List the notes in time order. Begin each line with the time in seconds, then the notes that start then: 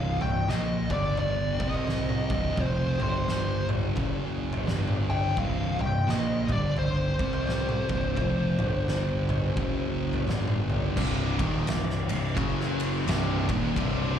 Already playing: C1 C2 G2 C3 C4 G4 D#5 F5
0.21 C1 C2 G2 G5, floor tom
0.47 A#1 A#2 F3 A#3 D#5, snare
0.89 G1 G2 D3 G3 D4 G4 D5, kick, floor tom, mid tom
1.17 D5, floor tom
1.60 C2 C3 G3 C4 D#5, kick
1.74 floor tom
1.87 snare, mid tom
2.09 mid tom
2.29 C1 C2 G2 C3 D#5, kick, floor tom
2.57 F1 F2 C3 F3 C5, kick, floor tom
2.99 G1 G2 D3 G3 D4, floor tom, mid tom
3.03 C5
3.28 snare
3.69 floor tom, mid tom
3.94 F#1 F#2 C#3 F#3 C#4 G#4, kick, floor tom
4.53 floor tom
4.66 G1 G2 D3 G3 D4 G4, snare, mid tom
4.88 mid tom
5.10 G5, floor tom
5.35 C1 C2 G2 C3 C4 D#5, kick, floor tom
5.39 F5
5.79 C1 C2 G2 G5, floor tom
6.07 A#1 A#2 F3 A#3 D#5, snare
6.48 G1 G2 D3 G3 D4 D5, kick, floor tom, mid tom
6.77 C5, floor tom
7.19 C2 C3 G3 C4 D5, kick
7.33 floor tom
7.47 snare, mid tom
7.69 mid tom
7.89 C1 C2 G2 C3, kick, floor tom
8.17 F1 F2 C3 F3, kick, floor tom
8.59 G1 G2 D3 G3 D4, floor tom, mid tom
8.88 snare
9.29 floor tom, mid tom
9.57 F#1 F#2 C#3 F#3 C#4 G#4, kick, floor tom
10.13 floor tom
10.24 G1 G3 D4 G4, mid tom
10.29 G2 D3 G3, snare
10.48 mid tom
10.70 floor tom
10.96 C1 C2 G2 C3 C4 G4 D5, kick, crash
11.39 D#1 D#2 A#2 D#3, kick, ride
11.67 C1 C2 G2, snare, ride
11.90 snare
12.09 C1 C2 G2, ride
12.36 F#1 F#2 C#3 F#3 C#4 G#4, kick, ride
12.61 snare
12.80 ride
13.06 C1 C2 G2 C3 G3 D4, snare, ride
13.48 D#1 D#2 A#2 D#3, kick, ride
13.76 C1 C2 G2 C3, kick, ride